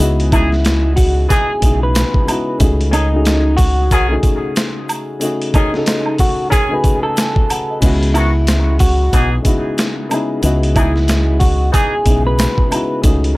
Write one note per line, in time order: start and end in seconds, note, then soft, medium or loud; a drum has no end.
0.00 1.26 C#2 loud
0.00 1.60 C#3 medium
0.00 1.61 G#3 medium
0.00 1.62 B3 medium
0.00 1.63 D#4 medium
0.00 1.64 E4 medium
0.00 0.02 F#4 medium
0.00 0.96 F#4 loud
0.00 1.65 G#4 loud
0.00 0.95 D#5 medium
0.00 shaker medium
0.20 closed hi-hat medium
0.32 0.49 E3 medium
0.32 0.49 D#4 medium
0.32 0.94 E4 medium
0.32 0.49 G#4 loud
0.32 kick loud
0.32 closed hi-hat medium
0.32 high woodblock medium
0.32 shaker medium
0.52 snare soft
0.65 snare loud
0.65 closed hi-hat medium
0.65 shaker medium
0.96 1.26 F#4 medium
0.96 kick loud
0.96 open hi-hat medium
0.96 shaker medium
1.29 1.50 E3 loud
1.29 1.50 D#4 loud
1.29 1.50 G#4 loud
1.29 1.79 G#4 medium
1.29 kick loud
1.29 closed hi-hat loud
1.29 shaker medium
1.60 2.03 B1 medium
1.60 2.11 C#3 medium
1.60 2.12 G#3 medium
1.60 2.12 B3 medium
1.60 2.12 D#4 medium
1.60 2.13 E4 medium
1.60 kick medium
1.60 closed hi-hat medium
1.60 shaker soft
1.65 2.13 G#4 medium
1.83 2.57 B4 medium
1.95 snare loud
1.95 closed hi-hat medium
1.95 shaker medium
2.14 kick loud
2.26 2.52 C#3 medium
2.26 2.52 G#3 medium
2.26 2.53 B3 medium
2.26 2.53 D#4 medium
2.26 2.54 E4 medium
2.26 closed hi-hat medium
2.26 high woodblock medium
2.26 shaker medium
2.30 2.54 F#4 medium
2.58 3.91 C#2 loud
2.58 2.95 C#3 medium
2.58 2.96 A3 medium
2.58 2.96 D#4 medium
2.58 2.97 F#4 medium
2.58 kick loud
2.58 closed hi-hat loud
2.58 shaker medium
2.63 2.98 G#4 medium
2.81 closed hi-hat medium
2.91 3.07 D#3 medium
2.91 3.07 C#4 medium
2.91 3.55 D#4 medium
2.91 3.07 G#4 medium
2.91 closed hi-hat medium
2.91 high woodblock medium
2.91 shaker medium
3.12 3.82 C#3 medium
3.12 3.82 A3 medium
3.12 3.83 D#4 medium
3.12 3.83 F#4 medium
3.16 3.84 G#4 loud
3.25 snare loud
3.25 closed hi-hat medium
3.25 shaker medium
3.57 4.06 F#4 medium
3.57 kick loud
3.57 open hi-hat medium
3.57 shaker medium
3.91 4.16 B1 loud
3.91 4.12 D#3 loud
3.91 4.12 C#4 medium
3.91 4.12 G#4 loud
3.91 kick loud
3.91 closed hi-hat medium
3.91 shaker medium
4.09 4.89 C#3 medium
4.09 4.89 A3 medium
4.09 4.90 D#4 medium
4.09 4.91 F#4 medium
4.13 4.91 G#4 loud
4.23 kick medium
4.23 closed hi-hat medium
4.23 shaker soft
4.56 snare loud
4.56 closed hi-hat loud
4.56 shaker medium
4.89 closed hi-hat medium
4.89 high woodblock medium
4.89 shaker medium
5.20 5.56 C#3 medium
5.20 5.57 A3 medium
5.20 5.57 D#4 medium
5.20 5.58 F#4 medium
5.20 closed hi-hat loud
5.20 shaker medium
5.24 5.59 G#4 medium
5.42 closed hi-hat medium
5.54 5.71 D#3 medium
5.54 5.71 C#4 medium
5.54 6.16 D#4 medium
5.54 5.71 G#4 loud
5.54 kick loud
5.54 closed hi-hat medium
5.54 high woodblock medium
5.54 shaker medium
5.72 6.42 C#3 medium
5.72 6.43 A3 medium
5.72 6.43 D#4 medium
5.72 6.44 F#4 medium
5.72 snare soft
5.77 6.45 A4 loud
5.86 snare loud
5.86 closed hi-hat medium
5.86 shaker medium
6.06 high woodblock medium
6.18 6.49 F#4 medium
6.18 kick loud
6.18 open hi-hat medium
6.18 shaker medium
6.50 6.71 D#3 medium
6.50 6.71 C#4 loud
6.50 6.71 G#4 loud
6.50 7.00 G#4 medium
6.50 kick loud
6.50 closed hi-hat loud
6.50 shaker medium
6.69 7.49 C#3 medium
6.69 7.50 A3 medium
6.69 7.50 D#4 medium
6.69 7.51 F#4 medium
6.73 7.52 B4 medium
6.84 kick medium
6.84 closed hi-hat medium
6.84 shaker soft
7.03 7.78 A4 medium
7.03 7.16 D#5 medium
7.03 high woodblock medium
7.17 7.49 G#5 medium
7.17 snare loud
7.17 closed hi-hat loud
7.17 shaker medium
7.36 kick loud
7.50 7.69 F#5 medium
7.50 closed hi-hat medium
7.50 high woodblock medium
7.50 shaker medium
7.70 7.82 D#5 medium
7.80 9.09 C#2 loud
7.80 8.76 C#3 medium
7.80 8.77 G#3 medium
7.80 8.77 B3 medium
7.80 8.78 E4 medium
7.80 8.77 D#5 medium
7.80 kick loud
7.80 closed hi-hat loud
7.80 crash loud
7.80 shaker medium
7.85 8.78 F#4 loud
8.03 closed hi-hat medium
8.14 8.32 D#3 medium
8.14 8.32 B3 medium
8.14 8.76 E4 medium
8.14 8.32 F#4 loud
8.14 closed hi-hat medium
8.14 high woodblock medium
8.14 shaker medium
8.47 snare loud
8.47 closed hi-hat medium
8.47 shaker medium
8.79 9.29 F#4 medium
8.79 kick loud
8.79 open hi-hat medium
8.79 shaker medium
9.13 9.38 B1 loud
9.13 9.34 E3 medium
9.13 9.34 D#4 loud
9.13 9.34 G#4 loud
9.13 kick loud
9.13 closed hi-hat loud
9.13 shaker medium
9.42 9.93 C#3 medium
9.42 9.94 G#3 medium
9.42 9.94 B3 medium
9.42 9.95 D#4 medium
9.42 9.95 E4 medium
9.42 kick medium
9.42 closed hi-hat medium
9.42 shaker medium
9.47 9.96 F#4 medium
9.78 snare loud
9.78 closed hi-hat medium
9.78 shaker medium
10.09 10.35 C#3 medium
10.09 10.35 G#3 medium
10.09 10.36 B3 medium
10.09 10.36 D#4 medium
10.09 10.37 E4 medium
10.09 closed hi-hat medium
10.09 high woodblock medium
10.09 shaker medium
10.14 10.37 G#4 loud
10.41 11.70 C#2 loud
10.41 11.37 C#3 medium
10.41 11.37 G#3 medium
10.41 11.38 B3 medium
10.41 11.39 E4 medium
10.41 11.38 D#5 medium
10.41 closed hi-hat loud
10.41 shaker medium
10.45 11.39 F#4 loud
10.63 closed hi-hat medium
10.76 10.93 E3 medium
10.76 10.93 D#4 medium
10.76 11.37 E4 medium
10.76 10.93 G#4 loud
10.76 kick loud
10.76 closed hi-hat medium
10.76 high woodblock medium
10.76 shaker medium
10.96 snare soft
11.08 snare loud
11.08 closed hi-hat medium
11.08 shaker medium
11.40 11.70 F#4 medium
11.40 kick loud
11.40 open hi-hat medium
11.40 shaker medium
11.72 11.93 E3 loud
11.72 11.93 D#4 loud
11.72 11.93 G#4 loud
11.72 12.23 G#4 medium
11.72 kick loud
11.72 closed hi-hat loud
11.72 shaker medium
12.03 12.46 B1 medium
12.03 12.54 C#3 medium
12.03 12.55 G#3 medium
12.03 12.55 B3 medium
12.03 12.56 D#4 medium
12.03 12.56 E4 medium
12.03 kick medium
12.03 closed hi-hat medium
12.03 shaker soft
12.08 12.57 G#4 medium
12.27 13.01 B4 medium
12.39 snare loud
12.39 closed hi-hat medium
12.39 shaker medium
12.58 kick loud
12.69 12.95 C#3 medium
12.69 12.96 G#3 medium
12.69 12.96 B3 medium
12.69 12.97 D#4 medium
12.69 12.97 E4 medium
12.69 closed hi-hat medium
12.69 high woodblock medium
12.69 shaker medium
12.74 12.98 F#4 medium
13.02 13.37 C#2 loud
13.02 13.37 C#3 medium
13.02 13.37 A3 medium
13.02 13.37 D#4 medium
13.02 13.37 F#4 medium
13.02 kick loud
13.02 closed hi-hat loud
13.02 shaker medium
13.06 13.37 G#4 medium
13.24 closed hi-hat medium